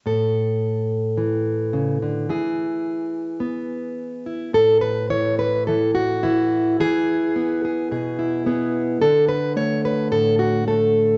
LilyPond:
\new Staff \with { instrumentName = "Steel-string acoustic guitar" } { \time 4/4 \key a \major \tempo 4 = 108 << { a'1 | gis'2.~ gis'8 e'8 | a'8 b'8 cis''8 b'8 a'8 fis'8 e'4 | gis'4. gis'8 gis'8 e'8 gis'4 |
a'8 b'8 cis''8 b'8 a'8 fis'8 a'4 | } \\ { a,2 e4 cis8 d8 | e2 b2 | a,4 e4 e4 e4 | e4 b4 b,4 b4 |
d4 a4 a,4 a4 | } >> }